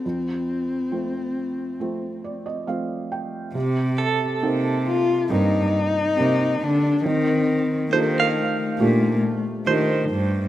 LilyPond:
<<
  \new Staff \with { instrumentName = "Clean electric guitar" } { \time 4/4 \key c \dorian \tempo 4 = 68 r1 | r8 a'2 r4. | r4 c''16 f''4.~ f''16 c''4 | }
  \new Staff \with { instrumentName = "Felt piano" } { \time 4/4 \key c \dorian << { r2 r8 d''16 ees''16 f''8 g''8 | r1 | r1 | } \\ { f,4 <f a c'>4 <f a c'>4 <f a c'>4 | c4 <bes c' ees'>4 <bes c' ees'>4 <bes c' g'>4 | ees4 <d' ees' f' g' a'>4 <a d' ees' f' g'>4 <a d' ees' f' g'>4 | } >> }
  \new Staff \with { instrumentName = "Cello" } { \time 4/4 \key c \dorian c'2. r4 | r4. f'8 ees'4. d'8 | c'4 bes8 a2 r8 | }
  \new Staff \with { instrumentName = "Cello" } { \clef bass \time 4/4 \key c \dorian r1 | c4 c4 g,8 r8 c8 d8 | ees4 ees4 bes,8 r8 ees8 g,8 | }
>>